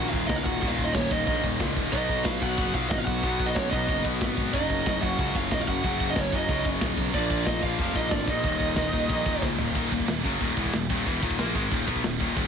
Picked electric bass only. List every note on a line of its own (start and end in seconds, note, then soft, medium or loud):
0.00 0.12 A#1 medium
0.13 0.28 D#1 medium
0.29 0.45 C#2 loud
0.45 0.61 D#1 loud
0.62 0.93 D#1 medium
0.95 1.10 D#1 medium
1.11 1.26 D#1 medium
1.27 1.43 A#1 loud
1.44 1.59 D#1 medium
1.60 1.75 C#2 loud
1.76 1.92 D#1 loud
1.93 2.24 B1 loud
2.25 2.40 B1 medium
2.42 2.57 B1 medium
2.58 2.73 F#1 loud
2.74 2.89 B1 medium
2.90 3.06 G#1 loud
3.07 3.22 B1 loud
3.23 3.54 B1 medium
3.56 3.71 B1 loud
3.72 3.87 B1 medium
3.89 4.04 F#1 medium
4.05 4.20 B1 medium
4.21 4.36 G#1 loud
4.37 4.52 G#1 loud
4.53 4.84 F#1 medium
4.86 5.01 F#1 loud
5.02 5.18 F#1 loud
5.19 5.34 C#2 medium
5.35 5.50 F#1 medium
5.51 5.67 D#1 loud
5.68 5.83 F#1 loud
5.84 6.15 F#1 loud
6.16 6.32 F#1 medium
6.32 6.48 F#1 loud
6.49 6.64 C#2 loud
6.65 6.81 F#1 loud
6.81 6.97 D#1 loud
6.97 7.13 B1 loud
7.14 7.45 A#1 medium
7.47 7.62 A#1 medium
7.63 7.78 A#1 medium
7.79 7.95 F1 loud
7.95 8.11 A#1 loud
8.11 8.27 G#1 loud
8.27 8.43 A#1 loud
8.44 8.75 D#1 loud
8.76 8.92 D#1 loud
8.93 9.09 D#1 medium
9.09 9.25 A#1 loud
9.26 9.41 D#1 medium
9.42 9.58 C#2 medium
9.59 9.75 D#1 loud
9.75 9.90 D#1 medium
9.92 10.07 D#1 medium
10.08 10.23 D#1 medium
10.24 10.39 F#1 loud
10.41 10.56 D#1 loud
10.57 10.72 E1 loud
10.73 10.88 D#1 medium
10.90 11.05 D#1 loud
11.06 11.21 E1 loud
11.22 11.37 D#1 loud
11.39 11.54 A#1 loud
11.55 11.70 G#1 loud
11.71 11.86 D#1 loud
11.88 12.03 B1 loud
12.05 12.20 D#1 medium
12.20 12.35 D#1 loud
12.37 12.47 D#1 medium